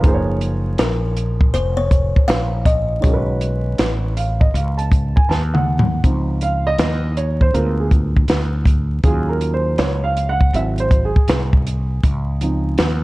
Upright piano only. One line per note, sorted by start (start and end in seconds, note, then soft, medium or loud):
0.00 2.98 F3 medium
0.00 2.99 A#3 medium
0.00 0.27 B4 medium
0.00 0.27 F5 medium
0.04 3.00 D#4 medium
0.04 3.01 G#4 medium
0.04 0.14 C5 medium
0.14 3.05 C#5 medium
3.00 5.98 D#3 medium
3.00 5.99 G#3 medium
3.00 6.00 C#4 medium
3.05 6.01 F#4 medium
3.05 3.14 A#4 medium
3.14 6.05 B4 medium
4.17 4.39 F5 medium
4.41 4.53 D#5 medium
4.54 4.77 F5 medium
4.78 5.13 A5 medium
5.16 5.28 G#5 medium
5.29 5.52 A5 medium
5.54 6.00 F#5 medium
6.04 7.12 F3 medium
6.04 7.12 C4 soft
6.04 7.13 D#4 medium
6.43 6.65 F5 medium
6.67 7.13 D#5 loud
7.17 7.42 C#5 medium
7.42 7.55 C5 medium
7.53 8.08 G#3 soft
7.53 8.08 B3 soft
7.53 8.08 F4 medium
7.53 7.77 A#4 medium
7.80 7.88 G#4 medium
9.04 10.50 F#3 medium
9.04 10.50 C#4 medium
9.04 10.50 F4 medium
9.04 9.30 G#4 medium
9.29 9.55 A#4 medium
9.54 9.80 C5 medium
9.78 10.04 C#5 medium
10.04 10.30 F5 medium
10.29 10.55 F#5 loud
10.54 11.08 F#3 medium
10.54 11.09 C4 soft
10.54 11.09 E4 medium
10.54 10.61 E5 medium
10.80 11.05 C5 medium
11.05 12.88 G#4 medium
12.41 13.04 F3 medium
12.41 13.04 C4 soft
12.41 13.04 D#4 medium